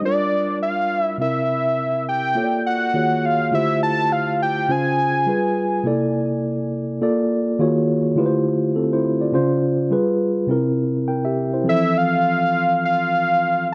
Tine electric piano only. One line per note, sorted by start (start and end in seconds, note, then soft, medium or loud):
0.02 1.17 G3 medium
0.02 1.17 D4 medium
0.02 1.18 F4 medium
0.02 1.19 A#4 medium
1.18 2.33 C3 medium
1.18 2.34 C4 medium
1.18 2.35 E4 medium
1.18 2.35 A#4 medium
2.35 2.93 A#3 medium
2.35 2.93 F4 medium
2.35 2.95 A4 medium
2.35 2.44 C#5 medium
2.44 2.98 D5 medium
2.94 3.53 D#3 medium
2.94 3.53 A#3 medium
2.94 3.52 F4 medium
2.94 3.53 F#4 medium
2.94 3.53 G#4 medium
2.94 3.53 C#5 medium
3.51 4.66 D3 medium
3.51 4.67 A3 medium
3.51 4.67 E4 medium
3.51 4.67 F4 medium
3.51 4.68 G4 medium
3.51 4.68 C5 medium
4.69 5.27 C#3 medium
4.69 5.27 C#4 medium
4.69 5.26 F4 medium
4.69 5.28 C5 medium
5.27 5.85 G3 medium
5.27 5.85 F4 medium
5.27 5.86 G#4 medium
5.27 5.86 B4 medium
5.84 6.99 C3 medium
5.84 6.99 A#3 medium
5.84 7.00 E4 medium
5.84 7.00 A4 medium
5.84 7.00 D5 medium
7.01 7.58 A#3 medium
7.01 7.59 F4 medium
7.01 7.60 A4 medium
7.01 7.61 D5 medium
7.59 8.18 D#3 medium
7.59 8.18 A#3 medium
7.59 8.17 F4 medium
7.59 8.18 F#4 medium
7.59 8.19 G#4 medium
7.59 8.19 C#5 medium
8.16 9.31 D3 medium
8.16 9.31 A3 medium
8.16 8.75 E4 medium
8.16 8.75 F4 medium
8.16 8.75 G4 medium
8.16 8.26 B4 medium
8.26 8.79 C5 medium
8.76 8.92 C4 medium
8.76 8.92 A4 medium
8.93 9.21 E4 medium
8.93 9.21 C5 medium
9.21 9.33 F4 soft
9.21 9.49 D5 medium
9.33 9.92 C#3 medium
9.33 9.92 C#4 medium
9.33 9.90 F4 medium
9.33 9.93 C5 medium
9.91 10.50 G3 medium
9.91 10.50 F4 medium
9.91 10.50 G#4 medium
9.91 10.51 B4 medium
10.47 11.63 C3 medium
10.47 11.64 C4 medium
10.47 11.07 E4 medium
10.47 11.08 A#4 medium
11.08 11.25 A#4 medium
11.08 11.24 G5 medium
11.25 11.53 G4 medium
11.25 11.53 E5 medium
11.54 11.82 E4 medium
11.54 11.82 C5 medium
11.64 13.74 E3 medium
11.64 13.74 F3 medium
11.64 13.74 C4 medium
11.68 13.74 A4 medium